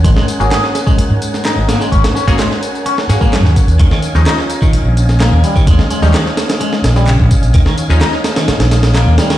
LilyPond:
<<
  \new Staff \with { instrumentName = "Tonewheel organ" } { \time 4/4 \key dis \phrygian \tempo 4 = 128 << { <cis' gis''>1~ | <cis' gis''>1~ | <cis' gis''>1~ | <cis' gis''>1~ |
<cis' gis''>1 | } \\ { <ais' fis''>1~ | <ais' fis''>1 | <dis'' eis''>1~ | <dis'' eis''>1~ |
<dis'' eis''>1 | } >> }
  \new Staff \with { instrumentName = "Synth stab" } { \time 4/4 \key dis \phrygian r8. <ais cis' fis' gis'>2.~ <ais cis' fis' gis'>16~ | <ais cis' fis' gis'>8. <ais cis' fis' gis'>16 r4. <ais cis' fis' gis'>4. | r8. <eis gis cis' dis'>2.~ <eis gis cis' dis'>16~ | <eis gis cis' dis'>8. <eis gis cis' dis'>16 r2. |
r8. <eis gis cis' dis'>2.~ <eis gis cis' dis'>16 | }
  \new Staff \with { instrumentName = "Clean electric guitar" } { \clef bass \time 4/4 \key dis \phrygian gis16 gis16 r8 gis'16 r8 gis16 r4 dis'8 ais16 gis16 | cis'16 r16 cis'16 ais16 gis16 r8. cis'16 r8 ais16 fis16 r8. | dis16 dis16 r8 dis'16 r8 dis16 r4 ais8 g16 dis16 | gis16 r16 gis16 g16 dis16 r8. gis16 r8 g16 cis16 r8. |
dis16 dis16 r8 dis'16 r8 dis16 r4 ais8 g16 dis16 | }
  \new Staff \with { instrumentName = "Fingered electric bass" } { \clef bass \time 4/4 \key dis \phrygian gis,,16 r8 gis,,16 r4 r16 gis,4 gis,,16 r8 | gis,,16 r8 gis,,16 r4. gis,8. dis,16 r16 dis,16 | dis,16 r8 dis,16 r4 r16 ais,,4 dis,16 r8 | dis,16 r8 dis,16 r4. ais,,8. ais,,16 r16 ais,,16 |
dis,16 r8 dis,16 r4 r16 ais,,4 dis,16 r8 | }
  \new DrumStaff \with { instrumentName = "Drums" } \drummode { \time 4/4 <hh bd tamb>16 sn16 <hh tamb>16 tamb16 <hc hh sn tamb>16 sn16 <hh sn tamb>16 <bd tamb>16 <hh tamb>8 <hh tamb>16 <sn tamb>16 <hc hh sn tamb>8 <hh sn tamb>16 <sn tamb>16 | <hh bd tamb>16 <hh sn>16 <sn tamb>16 <hh bd tamb>16 <hc hh sn tamb>16 sn16 <hh tamb>16 tamb16 <hh tamb>16 sn16 <hh sn tamb>16 <bd tamb>16 <hc hh sn tamb>16 sn16 <hh bd tamb>16 <hh tamb>16 | <hh bd tamb>16 sn16 <hh tamb>16 <sn tamb>16 <hc hh sn tamb>16 sn16 <hh tamb>16 <bd tamb>16 <hh tamb>8 <hh tamb>16 <sn tamb>16 <hc hh sn tamb>8 <hh tamb>16 <bd tamb>16 | <hh bd tamb>16 sn16 <hh tamb>16 <sn tamb>16 <hc hh sn tamb>16 sn16 <hh sn tamb>16 <hh sn tamb>16 <hh tamb>16 sn16 <hh sn tamb>16 <sn tamb>16 <hc hh sn tamb>16 bd16 <hh bd tamb>16 <hh tamb>16 |
<hh bd tamb>16 sn16 <hh tamb>16 <sn tamb>16 <hc hh sn tamb>16 sn16 <hh sn tamb>16 <hh sn tamb>16 <hh sn tamb>16 <hh sn>16 <hh sn tamb>16 <hh sn tamb>16 <hc hh sn tamb>8 <hh sn tamb>16 <hh sn tamb>16 | }
>>